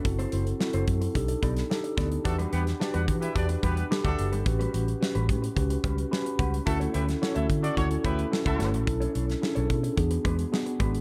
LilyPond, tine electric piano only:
\new Staff \with { instrumentName = "Tine electric piano" } { \time 4/4 \key b \minor \tempo 4 = 109 << { r1 | r1 | r2. b''8 fis''8 | r1 |
r1 | } \\ { <c' e' fis' a'>4 <c' e' fis' a'>4 <d' dis' g' a'>4 <d' dis' g' a'>4 | <d' fis' g' b'>4 <d' fis' g' b'>4 <d' fis' g' b'>4 <d' fis' g' a'>4 | <cis' fis' g' b'>4 <cis' fis' g' b'>4 <cis' fis' g' b'>4 <cis' fis' g' b'>4 | <cis' e' fis' a'>4 <cis' e' fis' a'>4 <cis' e' fis' a'>4 <cis' e' fis' a'>4 |
<cis' d' e' a'>4 <cis' d' e' gis' a'>4 <b d' fis' gis'>4 <b d' fis' gis'>4 | } >> }